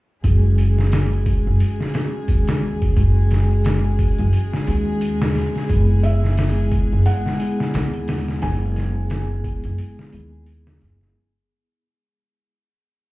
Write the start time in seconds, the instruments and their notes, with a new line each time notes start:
0.22 upright bass F#1, vibraphone G#3 C#4 F#4 G#4, string section G#3 G#4, kick, open hi-hat
0.58 open hi-hat
0.78 snare
0.92 snare, open hi-hat, tambourine
1.26 kick, open hi-hat
1.47 upright bass F#1
1.60 open hi-hat
1.81 snare
1.93 vibraphone G#3 C#4 F#4 G#4, snare, open hi-hat, triangle
2.28 upright bass D#2, kick, open hi-hat, tambourine
2.48 snare, open hi-hat
2.82 kick, open hi-hat
2.96 upright bass F#1, vibraphone G#3 C#4 F#4 G#4, kick, open hi-hat
3.31 snare, open hi-hat
3.64 snare, open hi-hat, tambourine
3.99 kick, open hi-hat
4.18 upright bass F#1, closed hi-hat, triangle
4.33 open hi-hat
4.54 snare
4.66 upright bass D#2, vibraphone G#3 C#4 F#4 G#4, open hi-hat
5.01 open hi-hat, tambourine
5.22 snare
5.35 snare, open hi-hat, triangle
5.56 snare
5.68 upright bass F#1, vibraphone G#3 B3 E4 G#4, kick, open hi-hat
6.03 felt piano E5, open hi-hat
6.24 snare
6.37 snare, open hi-hat, tambourine
6.71 kick, open hi-hat
6.92 upright bass F#1
7.06 felt piano F#5, open hi-hat
7.26 snare
7.39 vibraphone G#3 B3 E4 G#4, open hi-hat, triangle
7.60 snare
7.74 upright bass D#2, snare, open hi-hat, tambourine
7.94 closed hi-hat
8.08 snare, open hi-hat
8.28 snare
8.41 upright bass F#1, vibraphone G#3 B3 E4 G#4, felt piano G#5, snare, open hi-hat
8.76 snare, open hi-hat
9.10 snare, open hi-hat, tambourine
9.44 kick, open hi-hat
9.63 upright bass F#1, closed hi-hat, triangle
9.78 open hi-hat
9.99 snare
10.11 upright bass D#2, vibraphone G#3 B3 E4 G#4, open hi-hat
10.46 open hi-hat, tambourine
10.67 snare
10.81 upright bass F#1, snare, open hi-hat
11.01 snare